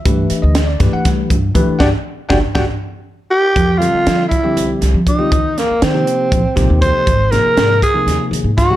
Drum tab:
HH |xxxxxxx|-------|xxxxxxx|xxxxxxx|
SD |--ooo--|o-oo---|--o--o-|-oo--o-|
BD |o--oooo|o-oo---|o--o--o|o---ooo|

HH |xxxxxxx|
SD |-oo-o-o|
BD |o--o--o|